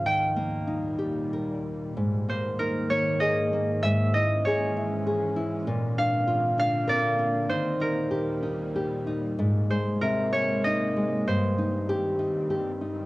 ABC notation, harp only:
X:1
M:3/4
L:1/8
Q:1/4=96
K:Ab
V:1 name="Harp"
g4- g z | z c B d e2 | _f e d3 z | z f2 f =d2 |
c B4 z | z c B d e2 | c2 z4 |]